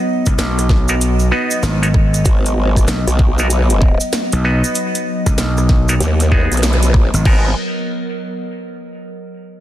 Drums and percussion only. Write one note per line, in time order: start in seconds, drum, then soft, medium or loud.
0.26 kick medium
0.26 cross-stick soft
0.26 closed hi-hat soft
0.26 cabasa medium
0.38 snare loud
0.38 closed hi-hat medium
0.38 cabasa medium
0.59 cross-stick soft
0.59 closed hi-hat medium
0.59 cabasa soft
0.69 kick loud
0.69 snare medium
0.88 cabasa medium
1.01 closed hi-hat medium
1.01 cabasa medium
1.19 cabasa soft
1.51 closed hi-hat soft
1.51 cabasa medium
1.63 snare loud
1.63 closed hi-hat medium
1.63 cabasa medium
1.83 closed hi-hat medium
1.83 cabasa soft
1.94 kick loud
1.94 cross-stick medium
2.14 closed hi-hat soft
2.14 cabasa medium
2.25 kick loud
2.25 closed hi-hat medium
2.25 cabasa medium
2.46 closed hi-hat medium
2.46 cabasa soft
2.76 kick medium
2.76 cross-stick soft
2.76 closed hi-hat soft
2.76 cabasa medium
2.84 cross-stick soft
2.84 cabasa medium
2.88 cross-stick soft
2.88 snare loud
2.88 closed hi-hat medium
2.94 cross-stick soft
2.98 cross-stick soft
3.08 cross-stick soft
3.08 closed hi-hat medium
3.08 cabasa soft
3.19 kick loud
3.38 cabasa medium
3.50 closed hi-hat medium
3.50 cabasa medium
3.70 closed hi-hat medium
3.70 cabasa soft
3.82 kick loud
4.00 closed hi-hat soft
4.00 cabasa medium
4.13 snare loud
4.13 closed hi-hat medium
4.13 cabasa medium
4.32 closed hi-hat medium
4.32 cabasa soft
4.64 closed hi-hat soft
4.64 cabasa medium
4.75 closed hi-hat medium
4.75 cabasa medium
4.95 closed hi-hat medium
4.95 cabasa soft
5.26 kick medium
5.26 cross-stick soft
5.26 closed hi-hat soft
5.26 cabasa medium
5.38 snare loud
5.38 closed hi-hat medium
5.38 cabasa medium
5.57 cross-stick soft
5.57 cabasa soft
5.69 kick loud
5.69 snare medium
5.89 closed hi-hat soft
5.89 cabasa medium
6.00 closed hi-hat medium
6.00 cabasa medium
6.20 closed hi-hat medium
6.20 cabasa soft
6.32 kick medium
6.52 closed hi-hat soft
6.52 cabasa medium
6.57 closed hi-hat soft
6.63 snare loud
6.63 closed hi-hat medium
6.63 cabasa medium
6.73 closed hi-hat soft
6.83 closed hi-hat medium
6.83 cabasa soft
6.94 kick loud
6.94 cross-stick medium
7.14 closed hi-hat soft
7.14 cabasa medium
7.25 kick loud
7.25 crash medium